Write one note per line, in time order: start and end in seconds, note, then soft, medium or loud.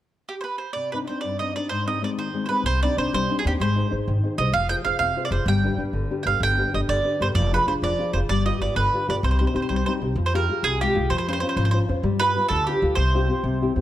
0.29 0.34 G4 soft
0.41 0.58 B4 medium
0.41 0.43 C5 soft
0.58 0.73 C5 soft
0.73 1.07 C3 soft
0.73 0.92 D5 medium
0.92 1.08 C4 soft
0.92 1.08 D4 soft
0.92 1.08 D#4 soft
0.92 0.97 B4 medium
1.07 1.34 C4 soft
1.07 1.34 D4 soft
1.07 1.34 D#4 soft
1.07 1.20 C5 soft
1.21 1.55 G2 soft
1.21 1.38 D5 medium
1.39 1.54 C4 soft
1.39 1.55 D4 soft
1.39 1.56 D#4 soft
1.39 1.53 D#5 medium
1.56 1.67 C4 soft
1.56 1.68 D4 soft
1.56 1.68 D#4 soft
1.56 1.69 D5 medium
1.69 2.01 G#2 soft
1.69 1.85 C5 medium
1.87 2.01 G#3 soft
1.87 2.01 C4 soft
1.87 2.02 D#4 soft
1.87 2.02 D#5 medium
2.02 2.27 G#3 soft
2.02 2.28 C4 soft
2.02 2.28 D#4 soft
2.02 2.09 D5 medium
2.18 2.48 D#3 soft
2.18 2.44 C5 medium
2.34 2.48 G#3 soft
2.34 2.48 C4 soft
2.34 2.49 D#4 soft
2.46 2.61 G#3 soft
2.46 2.63 B4 medium
2.46 2.48 C5 soft
2.50 2.62 C4 soft
2.50 2.62 D#4 soft
2.64 2.85 C2 medium
2.64 2.96 C3 soft
2.64 2.81 C5 medium
2.82 2.96 C4 soft
2.82 2.96 D4 soft
2.82 2.97 D#4 soft
2.82 2.96 D5 medium
2.97 3.07 C2 medium
2.97 3.23 C4 soft
2.97 3.23 D4 soft
2.97 3.23 D#4 soft
2.97 3.12 C5 medium
3.13 3.24 C2 medium
3.13 3.44 G3 soft
3.13 3.36 C5 medium
3.30 3.44 C4 soft
3.30 3.44 D4 soft
3.30 3.45 D#4 soft
3.39 3.45 G#4 medium
3.45 3.54 D#2 medium
3.45 3.57 C4 soft
3.45 3.57 D4 soft
3.45 3.57 D#4 soft
3.45 3.52 G4 medium
3.60 3.80 G#1 medium
3.60 3.91 G#3 medium
3.60 3.94 C5 medium
3.76 3.90 D#4 soft
3.76 3.90 G#4 soft
3.76 3.91 C5 soft
3.91 4.01 G#1 medium
3.91 4.17 D#4 soft
3.91 4.17 G#4 soft
3.91 4.17 C5 soft
4.08 4.18 G#1 medium
4.08 4.38 D#3 medium
4.24 4.38 D#4 soft
4.24 4.38 G#4 soft
4.24 4.39 C5 soft
4.38 4.48 C2 medium
4.38 4.51 D#4 soft
4.38 4.51 G#4 soft
4.38 4.51 C5 soft
4.38 4.52 D#5 medium
4.52 4.73 F1 medium
4.52 4.85 F3 soft
4.52 4.69 F5 loud
4.69 4.84 F4 soft
4.69 4.84 G#4 soft
4.69 4.85 C5 soft
4.69 4.74 G5 loud
4.85 4.95 F1 medium
4.85 5.10 F4 soft
4.85 5.11 G#4 soft
4.85 5.11 C5 soft
4.85 4.98 F5 medium
4.99 5.11 F1 medium
4.99 5.31 C3 medium
4.99 5.22 F5 medium
5.17 5.30 F4 soft
5.17 5.30 G#4 soft
5.17 5.31 C5 soft
5.25 5.31 D5 medium
5.31 5.41 F1 medium
5.31 5.43 F4 soft
5.31 5.43 G#4 soft
5.31 5.44 C5 soft
5.31 5.46 C5 medium
5.46 5.67 G1 loud
5.46 5.78 G3 medium
5.46 5.81 G5 medium
5.64 5.77 D4 soft
5.64 5.77 G4 soft
5.64 5.78 B4 soft
5.77 5.87 G1 medium
5.77 6.04 D4 soft
5.77 6.04 G4 soft
5.77 6.05 B4 soft
5.93 6.04 G1 medium
5.93 6.25 D3 medium
6.11 6.25 D4 soft
6.11 6.25 G4 soft
6.11 6.26 B4 soft
6.23 6.36 G1 medium
6.23 6.52 D4 soft
6.23 6.52 G4 soft
6.23 6.52 B4 soft
6.23 6.40 F5 medium
6.23 6.26 G5 medium
6.40 6.61 G1 medium
6.40 6.72 D3 soft
6.40 6.72 G5 loud
6.58 6.72 D4 soft
6.58 6.72 G4 soft
6.58 6.73 B4 soft
6.73 6.83 G1 medium
6.73 6.99 D4 soft
6.73 6.99 G4 soft
6.73 7.00 B4 soft
6.73 6.79 D#5 medium
6.88 7.00 G1 medium
6.88 7.19 D3 medium
6.88 7.19 D5 medium
7.04 7.18 D4 soft
7.04 7.19 G4 soft
7.04 7.20 B4 soft
7.19 7.30 G1 medium
7.19 7.32 D4 soft
7.19 7.32 G4 soft
7.19 7.33 B4 soft
7.19 7.27 C5 medium
7.35 7.56 F1 medium
7.35 7.67 F3 medium
7.35 7.51 D5 medium
7.52 7.66 D4 soft
7.52 7.66 F4 soft
7.52 7.66 G#4 soft
7.52 7.67 B4 medium
7.67 7.77 F1 medium
7.67 7.92 D4 soft
7.67 7.93 F4 soft
7.67 7.93 G#4 soft
7.67 7.73 C5 medium
7.82 7.93 F1 medium
7.82 8.13 F3 medium
7.82 8.13 D5 medium
7.99 8.14 D4 soft
7.99 8.14 F4 soft
7.99 8.15 G#4 soft
8.13 8.23 F1 medium
8.13 8.27 D4 soft
8.13 8.27 F4 soft
8.13 8.27 G#4 soft
8.13 8.18 C5 medium
8.29 8.50 G1 medium
8.29 8.61 G3 medium
8.29 8.45 D5 medium
8.46 8.60 F4 soft
8.46 8.60 G4 soft
8.46 8.60 B4 soft
8.46 8.61 D#5 medium
8.60 8.70 G1 medium
8.60 8.87 F4 soft
8.60 8.87 G4 soft
8.60 8.87 B4 soft
8.60 8.76 D5 medium
8.75 8.87 G1 medium
8.75 9.06 D3 medium
8.75 9.06 B4 medium
8.93 9.07 F4 soft
8.93 9.07 G4 soft
8.93 9.08 B4 soft
9.08 9.18 G1 medium
9.08 9.20 F4 soft
9.08 9.20 G4 soft
9.08 9.20 B4 soft
9.08 9.15 D5 medium
9.23 9.44 C2 loud
9.23 9.54 C3 soft
9.23 9.30 C5 medium
9.31 9.38 C5 soft
9.39 9.52 C4 soft
9.39 9.53 D#4 soft
9.39 9.53 G4 soft
9.39 9.46 C5 soft
9.47 9.53 C5 soft
9.53 9.65 C2 medium
9.53 9.80 C4 soft
9.53 9.80 D#4 soft
9.53 9.80 G4 soft
9.53 9.61 C5 soft
9.62 9.68 C5 soft
9.69 9.81 C2 medium
9.69 10.02 G3 medium
9.69 9.75 C5 soft
9.76 9.84 C5 soft
9.86 10.01 C4 soft
9.86 10.02 D#4 soft
9.86 10.02 G4 soft
9.86 9.92 C5 medium
10.02 10.12 C2 medium
10.02 10.14 C4 soft
10.02 10.15 D#4 soft
10.02 10.15 G4 soft
10.16 10.47 F2 medium
10.16 10.49 F3 soft
10.26 10.34 C5 medium
10.35 10.48 F4 soft
10.35 10.49 G4 soft
10.35 10.49 G#4 soft
10.35 10.63 A#4 medium
10.49 10.75 F4 soft
10.49 10.75 G4 soft
10.49 10.75 G#4 soft
10.63 10.84 C2 medium
10.63 10.95 C3 medium
10.63 10.80 G#4 medium
10.81 11.05 G#3 soft
10.81 10.94 F4 soft
10.81 11.09 G4 medium
10.81 10.94 G4 soft
10.95 11.05 C2 medium
10.95 11.08 F4 soft
10.95 11.08 G4 soft
10.95 11.08 G#4 soft
11.10 11.41 F2 medium
11.10 11.42 F3 medium
11.10 11.17 C5 medium
11.18 11.26 C5 medium
11.28 11.41 C#4 soft
11.28 11.42 F4 soft
11.28 11.42 C5 soft
11.28 11.32 C5 medium
11.33 11.39 C5 medium
11.40 11.68 C#4 soft
11.40 11.68 F4 soft
11.40 11.47 C5 medium
11.40 11.69 C5 soft
11.49 11.55 C5 medium
11.56 11.77 G#1 medium
11.56 11.89 F3 medium
11.56 11.64 C5 medium
11.65 11.70 C5 medium
11.71 11.87 C#4 soft
11.71 11.88 F4 soft
11.71 11.78 C5 medium
11.71 11.88 C5 soft
11.88 11.99 F2 medium
11.88 12.01 C#4 soft
11.88 12.01 F4 soft
11.88 12.01 C5 medium
12.03 12.34 G2 medium
12.03 12.35 G3 medium
12.20 12.35 F4 soft
12.20 12.36 G4 soft
12.20 12.48 B4 loud
12.20 12.37 B4 medium
12.36 12.62 F4 soft
12.36 12.62 G4 soft
12.36 12.62 B4 soft
12.49 12.71 D2 loud
12.49 12.82 D3 medium
12.49 12.65 A4 loud
12.67 12.82 F4 soft
12.67 12.98 G4 medium
12.67 12.82 G4 soft
12.67 12.83 B4 soft
12.82 12.92 D2 medium
12.82 12.95 F4 soft
12.82 12.95 G4 soft
12.82 12.95 B4 soft
12.95 13.27 C2 medium
12.95 13.29 C3 medium
12.95 13.71 C5 medium
13.14 13.28 C4 soft
13.14 13.28 F4 soft
13.14 13.29 G4 medium
13.29 13.41 C4 soft
13.29 13.41 F4 soft
13.29 13.42 G4 soft
13.43 13.65 C2 medium
13.43 13.75 C3 medium
13.61 13.75 C4 soft
13.61 13.76 E4 soft
13.61 13.76 G4 medium
13.76 13.81 E2 medium
13.76 13.81 C4 soft
13.76 13.81 E4 soft
13.76 13.81 G4 soft